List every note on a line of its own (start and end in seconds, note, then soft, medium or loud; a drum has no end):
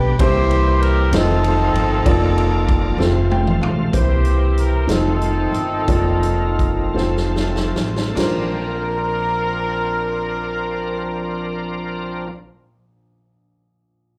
0.00 0.17 B1 loud
0.00 0.17 B2 medium
0.00 0.22 B2 medium
0.00 0.16 D4 medium
0.00 0.21 D4 medium
0.00 0.16 G4 medium
0.00 0.17 G4 medium
0.00 0.20 G4 medium
0.00 0.15 B4 medium
0.00 0.22 B4 medium
0.18 1.09 C2 loud
0.18 1.09 C3 medium
0.18 1.12 E3 medium
0.18 1.12 G3 medium
0.18 1.12 A#3 medium
0.18 0.99 A#3 medium
0.18 1.12 C4 medium
0.18 0.99 C4 medium
0.18 0.99 E4 medium
0.18 1.09 E4 medium
0.18 1.12 G4 medium
0.18 0.99 G4 medium
0.18 1.09 G4 medium
0.18 0.77 C5 loud
0.18 1.00 C5 loud
0.18 kick loud
0.18 ride medium
0.51 ride soft
0.80 1.12 A#4 loud
0.80 ride soft
1.12 1.71 F1 loud
1.12 2.06 D#3 medium
1.12 2.06 F3 medium
1.12 1.92 A3 medium
1.12 2.07 A3 medium
1.12 1.92 C4 medium
1.12 2.06 C4 medium
1.12 3.28 C4 medium
1.12 1.93 D#4 medium
1.12 3.28 D#4 medium
1.12 1.20 E4 medium
1.12 1.93 F4 medium
1.12 3.31 A4 loud
1.12 1.93 C5 medium
1.12 snare loud
1.12 ride medium
1.20 2.05 F4 medium
1.44 ride soft
1.74 2.03 G1 loud
1.74 ride soft
2.06 2.95 F1 loud
2.06 2.99 A#3 medium
2.06 2.86 A#3 loud
2.06 2.86 F4 medium
2.06 2.98 F4 loud
2.06 2.86 D5 loud
2.06 2.99 D5 medium
2.06 kick loud
2.06 ride medium
2.38 ride soft
2.69 kick loud
2.69 ride soft
2.98 3.57 F1 loud
2.98 3.93 A3 medium
2.98 3.79 C4 medium
2.98 3.92 C4 medium
2.98 3.79 F4 medium
2.98 3.93 F4 medium
2.98 3.80 A4 medium
2.98 snare medium
3.31 3.60 G5 medium
3.31 high tom medium
3.47 mid tom medium
3.61 3.90 A#1 medium
3.61 3.91 F5 medium
3.61 mid tom loud
3.92 4.84 C2 medium
3.92 4.84 C3 medium
3.92 4.88 E3 medium
3.92 4.73 A#3 medium
3.92 4.88 A#3 medium
3.92 4.88 C4 medium
3.92 4.74 E4 medium
3.92 4.85 E4 medium
3.92 4.88 G4 medium
3.92 4.74 G4 medium
3.92 4.85 G4 medium
3.92 4.74 C5 medium
3.92 4.53 C5 medium
3.92 kick loud
3.92 closed hi-hat medium
4.25 closed hi-hat soft
4.58 4.89 A#4 medium
4.58 closed hi-hat soft
4.87 5.49 F1 medium
4.87 5.88 D#3 medium
4.87 5.72 A3 medium
4.87 5.88 A3 soft
4.87 5.88 C4 soft
4.87 7.72 C4 medium
4.87 5.72 D#4 medium
4.87 7.72 D#4 medium
4.87 5.72 F4 medium
4.87 5.87 F4 medium
4.87 7.76 A4 medium
4.87 5.73 C5 medium
4.87 snare loud
4.87 closed hi-hat medium
5.22 closed hi-hat soft
5.52 5.84 G1 medium
5.52 closed hi-hat soft
5.87 6.92 F1 loud
5.87 6.94 F3 medium
5.87 6.96 A#3 medium
5.87 6.79 A#3 medium
5.87 6.96 F4 medium
5.87 6.80 F4 medium
5.87 6.80 D5 medium
5.87 kick loud
5.87 closed hi-hat medium
6.23 closed hi-hat soft
6.59 kick medium
6.59 closed hi-hat soft
6.93 7.71 F1 medium
6.93 8.15 F3 medium
6.93 7.97 A3 medium
6.93 8.16 A3 medium
6.93 8.14 C4 medium
6.93 7.98 C4 medium
6.93 7.98 F4 medium
6.93 8.16 A4 medium
6.93 7.98 C5 medium
6.97 snare soft
7.17 snare soft
7.36 snare medium
7.56 snare medium
7.74 8.13 A1 medium
7.74 snare medium
7.96 snare medium
8.14 12.29 A#1 medium
8.14 12.29 F3 medium
8.14 12.26 A#3 medium
8.14 12.28 C4 medium
8.14 12.28 D4 medium
8.14 12.30 F4 medium
8.14 12.29 A#4 medium
8.14 12.30 A#4 medium
8.14 crash medium
8.18 12.32 C5 medium
8.18 snare medium